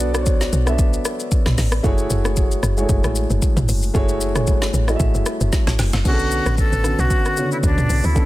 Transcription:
Already playing: B1 B3 D4 F#4 A4 C#5 D5
0.00 shaker
0.13 B3 D4 F#4 A4 C5, cross-stick, shaker
0.22 C#5
0.26 kick, shaker
0.41 snare, shaker
0.53 B1, shaker
0.66 B3 D4 F#4 A4 E5, cross-stick, shaker
0.79 kick, shaker
0.93 shaker
1.05 cross-stick, shaker
1.20 shaker
1.31 kick, shaker
1.46 B1, cross-stick, snare, mid tom, shaker
1.58 A1, snare, open hi-hat, shaker
1.72 cross-stick, shaker
1.83 F#1 A3 E4 F#4 G#4 C#5, kick, shaker
1.98 shaker
2.10 F#1, shaker
2.24 A3 E4 F#4 G#4 C#5, cross-stick, shaker
2.36 kick, shaker
2.51 shaker
2.63 F#1, cross-stick, shaker
2.77 G#3 E4 F#4 G#4 C#5, shaker
2.83 A3
2.89 F#1, kick, shaker
3.04 A1, cross-stick, shaker
3.16 shaker
3.30 F#1, shaker
3.42 kick, shaker
3.57 A1, mid tom, shaker
3.69 F#1, open hi-hat, shaker
3.82 shaker
3.94 F#1 A3 E4 F#4 G#4 C#5, kick, shaker
4.09 shaker
4.21 shaker
4.35 A3 E4 F#4 G#4 C#5, cross-stick, mid tom, shaker
4.47 kick, shaker
4.62 snare, shaker
4.74 A1, shaker
4.87 A3 E4 F#4 G#4 D#5, cross-stick, shaker
4.96 E5
5.00 A1, kick, shaker
5.15 F#1, shaker
5.26 cross-stick, shaker
5.41 F#1, shaker
5.53 kick, snare, shaker
5.67 A1, snare, shaker
5.79 F#1, snare, open hi-hat, shaker
5.93 F#1, snare, shaker
6.04 B1 D3 B3 C#4 F#4 G#4, kick, crash, shaker
6.13 A4
6.19 shaker
6.31 shaker
6.46 A1, cross-stick, shaker
6.58 A4, kick, shaker
6.72 A1, shaker
6.83 D3 B3 C#4 F#4, cross-stick, shaker
6.99 B1 F#4, shaker
7.10 kick, shaker
7.25 cross-stick, shaker
7.36 C#3 B3 F#4 C#5, shaker
7.42 D3
7.52 E4, shaker
7.63 D2 D4, kick, shaker
7.78 mid tom, shaker
7.90 B1, open hi-hat, shaker
8.04 D2 E4, shaker
8.15 B1 D3 B3 C#4 A4, kick, shaker

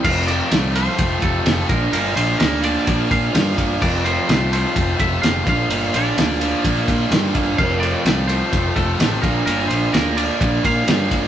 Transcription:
0.04 F1 F2 C3 F3 A3 C4 F4 F5, kick, crash
0.27 F3 A3 C4 F4 D5, ride
0.50 C2 F2 C3 F3 A3 C4 F4, snare, ride
0.74 F3 A3 C4 F4 C5, ride
0.98 F1 A3, kick, ride
1.21 F1 C3 F3 A3 C4 F4 A4, kick, ride
1.44 F1 F3 A3 C4 F4, snare, ride
1.68 A#1 A#2 D3 A#3 D4 F4 A#4, kick, ride
1.92 G1 A#2 D3 A#3 D4 F4 A#4, ride
2.15 A#1 F3 A#3 D4 F4 C5, ride
2.39 D2 A#2 D3 A#3 D4 F4 A#4, snare, ride
2.62 F3 A#3 D4 F4 D5, ride
2.86 A#1 A#3, kick, ride
3.09 A#2 A#3 D4 F4 F5, kick, ride
3.33 G2 D3 F3 A#3 D4 F4, snare, ride
3.57 G1 A#3, kick, ride
3.80 F1 F2 C3 F3 A3 C4 F4 D5, kick, crash
4.04 F3 A3 C4 F4 C5, ride
4.27 C2 F2 C3 F3 A3 C4 F4, snare, ride
4.51 F3 A3 C4 F4 C5, ride
4.75 F1 A3, kick, ride
4.99 F1 C3 F3 A3 C4 F4 E5, kick, ride
5.22 F1 F3 A3 C4 F4 F5, snare, ride
5.46 A#1 A#2 D3 A#3 D4 F4 F5, kick, ride
5.69 G1 A#2 D3 A#3 D4 F4, ride
5.93 A#1 F3 A#3 D4 F4 D5, ride
6.16 D2 A#2 D3 A#3 D4 F4, snare, ride
6.40 F3 A#3 D4 F4, ride
6.63 A#1 A#3, kick, ride
6.87 A#2 A#3 D4 F4 C5, kick, ride
7.10 G2 D3 F3 A#3 D4 F4, snare, ride
7.34 G1 A#3, kick, ride
7.57 F1 F2 C3 F3 A3 C4 F4 F5, kick, crash
7.80 A3 C4 F4 D5, ride
7.84 F3
8.05 C2 F2 C3 F3 A3 C4 F4, snare, ride
8.28 F3 A3 C4 F4 C5, ride
8.52 F1 A3, kick, ride
8.75 F1 C3 F3 A3 C4 F4 A4, kick, ride
8.99 A1 F3 A3 C4 F4, snare, ride
9.22 A#1 A#2 D3 A#3 D4 F4 A#4, kick, ride
9.46 G1 A#2 D3 A#3 D4 F4 A#4, ride
9.68 A#1 F3 A#3 D4 F4 C5, ride
9.93 D2 A#2 D3 A#3 D4 F4 A#4, snare, ride
10.16 F3 A#3 D4 F4 D5, ride
10.41 A#1 A#3, kick, ride
10.63 A#2 A#3 D4 F4 F5, kick, ride
10.86 G2 D3 F3 A#3 D4 F4, snare, ride
11.10 G1 A#3, kick, ride

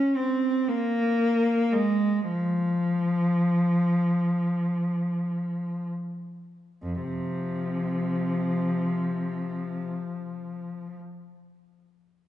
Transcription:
Already playing: C#4
0.16 C4
0.69 A#3
1.73 G#3
2.29 F3
6.82 F2
7.04 C3 F3

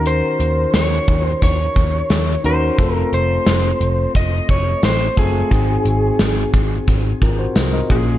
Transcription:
Already playing: D#2 D#3 C#4 D#4 F#4 A#4
0.06 C5, closed hi-hat
0.40 D#2, closed hi-hat
0.74 D#2 C#5, snare, closed hi-hat
1.08 D#2, kick, closed hi-hat
1.24 C5
1.42 D#2 C#5, kick, closed hi-hat
1.76 D#2, kick, closed hi-hat
2.10 D#2, snare, closed hi-hat
2.44 D#2 C#4 D#4 F#4 A#4 C5, closed hi-hat
2.78 F1 A3 C4 F4 A4, kick, closed hi-hat
2.94 A#4
3.13 F1 C5, closed hi-hat
3.47 F1, snare, closed hi-hat
3.81 F1, closed hi-hat
4.15 F1 D#5, kick, closed hi-hat
4.49 F1 C#5, kick, closed hi-hat
4.83 A1 C5, snare, closed hi-hat
5.17 F#1 A3 C4 F4 G#4 A4, kick, closed hi-hat
5.51 G#1 G#2 C4 D#4 F#4 G#4, kick, closed hi-hat
5.85 G#1, closed hi-hat
6.19 G#1, snare, closed hi-hat
6.54 G#1, kick, closed hi-hat
6.88 G#1, kick, closed hi-hat
7.22 G#1 F4 A#4, kick, closed hi-hat
7.39 F#4 C5
7.56 C2, snare, closed hi-hat
7.73 A#4 D#5
7.90 A#1 A#2 A#3 C#4 F4 G#4, kick, closed hi-hat

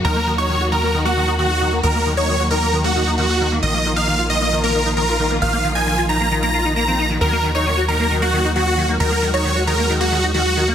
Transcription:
Already playing: F#3 A#3 F#4
0.05 D#2 D#3 A#4
0.16 A#3
0.27 D#3
0.38 D#4 C#5
0.49 D#3
0.61 F#4
0.72 D#3 A#4
0.83 A#3
0.94 D#3
1.05 A#3 F#4
1.17 D#3
1.28 D#4
1.39 D#3 F#4
1.50 F#4
1.61 D#3
1.73 A#3
1.83 D#2 D#3 A#4
1.95 A#3
2.06 D#3
2.17 D#4 C#5
2.29 D#3
2.40 F#4
2.51 D#3 A#4
2.62 A#3
2.73 D#3
2.84 A#3 F#4
2.96 D#3
3.07 D#4
3.18 D#3 F#4
3.30 F#4
3.41 D#3
3.52 A#3
3.63 A#1 D#3 F3 F4 D#5
3.74 A#3
3.85 D#3
3.96 D#4 F5
4.08 D#3
4.19 F4
4.30 D#3 D#5
4.41 A#3
4.52 D#3
4.64 A#3 A#4
4.75 D#3
4.86 D#4
4.97 D#3 A#4
5.08 F4
5.20 D#3
5.31 A#3
5.42 A#1 D#3 F5
5.53 A#3
5.64 D#3
5.75 D#4 G#5
5.87 D#3
5.98 F4
6.09 D#3 A#5
6.20 A#3
6.31 D#3
6.43 A#3 A#5
6.54 F4
6.65 D#4
6.76 A#3 A#5
6.88 C4
6.99 D#4
7.10 D#3
7.21 D#2 D#3 F#3 A#3 F#4 A#4
7.32 A#3
7.43 D#3
7.55 D#4 C#5
7.66 D#3
7.77 F#4
7.88 D#3 A#4
7.99 A#3
8.11 D#3
8.22 A#3 F#4
8.33 D#3
8.44 D#4
8.56 D#3 F#4
8.67 F#4
8.78 D#3
8.89 A#3
9.00 D#2 D#3 G#3 A#4
9.11 A#3
9.22 D#3
9.34 D#4 C#5
9.45 D#3
9.56 F#4
9.67 D#3 A#4
9.78 A#3
9.90 D#3
10.01 A#3 F#4
10.12 D#3
10.23 D#4
10.34 D#3 F#4
10.45 F#4
10.57 D#3
10.68 A#3

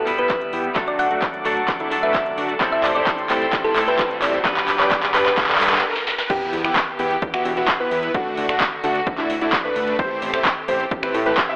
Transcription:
Already playing: B3 E4 F#4 G4 E5 B5, riser
0.05 E1 G3 B3 E4 B4, open hi-hat
0.18 B3 E4 B4, closed hi-hat
0.30 kick, clap, closed hi-hat
0.41 closed hi-hat
0.53 E2 B3 E4 G4, open hi-hat
0.64 closed hi-hat
0.75 F#3 A3 D4 F#4 A4 F#5 D6, kick, clap, closed hi-hat
0.87 D5, closed hi-hat
0.99 D2 F#5, open hi-hat
1.11 A3 D4 F#4, closed hi-hat
1.22 kick, clap, closed hi-hat
1.34 closed hi-hat
1.45 D2 F#3 A3 D4 F#4 A4, open hi-hat
1.68 D2, kick, clap, closed hi-hat
1.80 A3 D4 E4, closed hi-hat
1.90 D1 F#3 A3 D4 A4, open hi-hat
2.03 A3 D4 B4 E5
2.15 kick, clap, closed hi-hat
2.26 closed hi-hat
2.37 D2 A3 D4 F#4, open hi-hat
2.49 closed hi-hat
2.59 A2 G3 A3 C4 E4 G4 A4 C5 G5 C6, kick, clap, closed hi-hat
2.72 E5, closed hi-hat
2.84 A1 D5, clap, open hi-hat
2.95 A3 C4 E4 G4 C5 D5, closed hi-hat
3.07 kick, clap, closed hi-hat
3.18 closed hi-hat
3.29 A1 A2 G3 A3 C4 E4 G4 A4 C5, clap, open hi-hat
3.42 closed hi-hat
3.53 A1, kick, clap, closed hi-hat
3.64 A3 C4 E4 G4 A4 B4, closed hi-hat
3.75 A2 G3 C4 E4 A4, clap, open hi-hat
3.88 A3 C4 E4 G4 B4 E5, closed hi-hat
3.99 kick, clap, closed hi-hat
4.11 closed hi-hat
4.22 A1 A3 C4 E4 G4 C5 D5, clap, open hi-hat
4.34 closed hi-hat
4.44 G2 G3 B3 D4 G4 B4 G5 D6, kick, clap, closed hi-hat
4.57 clap, closed hi-hat
4.68 G1, clap, open hi-hat
4.79 D4 G4 B4 D5, clap, closed hi-hat
4.91 kick, clap, closed hi-hat
5.03 clap, closed hi-hat
5.14 G1 G2 G3 B3 D4 G4 B4, clap, open hi-hat
5.26 B4, clap, closed hi-hat
5.37 G1, kick, clap, closed hi-hat
5.44 clap
5.49 D4 G4 A4, clap, closed hi-hat
5.55 clap
5.60 G2 G3 B3 D4 B4, clap, open hi-hat
5.67 clap
5.72 D4 G4 A4, clap
5.78 clap
5.96 snare
6.07 snare
6.18 snare
6.30 E3 B3 E4 G4, kick, closed hi-hat, crash, sub drop
6.53 E2, open hi-hat
6.64 B3 E4 G4, finger snap, closed hi-hat
6.76 kick, clap, closed hi-hat
6.99 E2 B3 E4 G4, open hi-hat
7.11 closed hi-hat
7.22 E2, kick, closed hi-hat
7.34 B3 E4 F#4, finger snap
7.45 E1, open hi-hat
7.57 B3 E4 F#4, closed hi-hat
7.68 kick, clap, closed hi-hat
7.80 B3 E4 B4
7.91 E2, open hi-hat
8.03 closed hi-hat
8.14 D3 A3 D4 F#4, kick, closed hi-hat
8.37 D2, open hi-hat
8.49 A3 D4 F#4, finger snap, closed hi-hat
8.60 kick, clap, closed hi-hat
8.84 D2 A3 D4 F#4, open hi-hat
8.95 closed hi-hat
9.07 D2, kick, closed hi-hat
9.18 A3 D4 E4, clap
9.30 D1, open hi-hat
9.41 A3 D4 E4, closed hi-hat
9.53 kick, clap, closed hi-hat
9.64 A3 D4 B4
9.76 D2, open hi-hat
9.88 closed hi-hat
9.99 C3 A3 C4 E4 G4 C5, kick, closed hi-hat
10.22 A1, open hi-hat
10.33 A3 C4 E4 G4 C5, finger snap, closed hi-hat
10.45 kick, clap, closed hi-hat
10.68 A1 A3 C4 E4 G4 C5, open hi-hat
10.80 closed hi-hat
10.91 A1, kick, closed hi-hat
11.03 A3 C4 E4 G4 B4, finger snap
11.14 A2, open hi-hat
11.26 A3 C4 E4 G4 B4, closed hi-hat
11.37 kick, clap, closed hi-hat
11.49 A3 C4 E4 G4 E5

